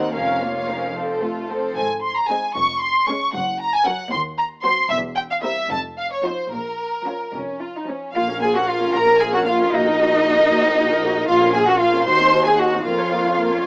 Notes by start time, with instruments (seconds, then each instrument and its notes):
Already playing: double bass section D#2, cello section D#2, viola section D#3 C4, violin section D#4 C5 F#5
0.13 double bass section F1, cello section F2, viola section F3 C#4, violin section C#4 A#4 F5
0.40 viola section A#3, violin section F4 C#5
0.67 viola section F3 C#4, violin section C#4 A#4
0.95 viola section F3 C4, violin section A4 C5
1.21 viola section A3, violin section F4 A4
1.49 viola section F3 C4, violin section A4 C5
1.75 double bass section G#1, cello section G#2, violin section G#5
2.02 violin section C6
2.17 violin section A#5
2.28 viola section G#3 C4, violin section D#4 G#4 G#5
2.55 double bass section F1, cello section F2, violin section C#6
2.81 violin section C6
3.07 viola section G#3 C#4, violin section C#4 G#4 C#6
3.34 double bass section F#1, cello section F#2, violin section F#5
3.60 violin section A#5
3.75 violin section G#5
3.85 viola section F#3 C#4, violin section C#4 A#4 F#5
4.12 double bass section D#2, cello section D#2, violin section C6
4.38 violin section A#5
4.64 viola section F#3 C4, violin section F#4 C5 C6
4.90 double bass section E1, cello section E2, violin section E5
5.17 violin section G5
5.31 violin section F5
5.42 viola section G3 C4, violin section E4 A#4 E5
5.69 double bass section F1, cello section F2, violin section A5
5.97 violin section F5
6.12 violin section C#5
6.23 viola section F3 C4, violin section D#4 F4 C5
6.51 double bass section A#1, cello section A#2, violin section A#4
7.06 viola section F3 C#4, violin section C#4 F4
7.32 double bass section F1, cello section F2, violin section C#4
7.60 violin section F4
7.75 violin section D#4
7.87 viola section F3 C#4, violin section C#4
8.14 double bass section A#1, viola section A#3 F4, cello section F4, violin section F5
8.28 viola section C#4 A#4
8.41 viola section A#3 F4, cello section G#4, violin section G#5
8.53 viola section C#4 A#4, cello section F#4, violin section F#5
8.67 viola section A#3 F4, cello section F4, violin section F5
8.80 viola section C#4 A#4
8.92 double bass section A#1, viola section A#3 F4, cello section A#4, violin section A#5
9.07 viola section C#4 A#4
9.18 viola section A#3 F4, cello section G#4, violin section G#5
9.31 viola section C#4 A#4, cello section F#4, violin section F#5
9.45 viola section A#3 F4, cello section F4, violin section F5
9.59 viola section C#4 A#4
9.71 double bass section A#1, viola section A#3 F#4, cello section D#4, violin section D#5
9.86 viola section D#4 A#4
9.98 viola section A#3 F#4
10.12 viola section D#4 A#4
10.24 viola section A#3 F#4
10.37 viola section D#4 A#4
10.49 double bass section A#1, viola section A#3 F#4
10.64 viola section D#4 A#4
10.76 viola section A#3 F#4
10.90 viola section D#4 A#4
11.02 viola section A#3 F#4
11.15 viola section D#4 A#4
11.27 double bass section A#1, viola section A#3 F4, cello section F4, violin section F5
11.42 viola section C#4 A#4
11.53 viola section A#3 F4, cello section G#4, violin section G#5
11.66 viola section C#4 A#4, cello section F#4, violin section F#5
11.79 viola section A#3 F4, cello section F4, violin section F5
11.93 viola section C#4 A#4
12.05 double bass section D#2, viola section D#4 F#4, cello section C5, violin section C6
12.20 viola section C4 D#4
12.33 viola section D#4 F#4
12.44 viola section C4 D#4, cello section G#4, violin section G#5
12.57 viola section D#4 F#4, cello section F#4, violin section F#5
12.71 viola section C4 D#4
12.83 double bass section F2, viola section A#3 A#4, cello section F4, violin section F5
12.98 viola section C#4 C#5
13.12 viola section A#3 A#4
13.26 viola section C#4 C#5
13.39 viola section A#3 A#4
13.52 viola section C#4 C#5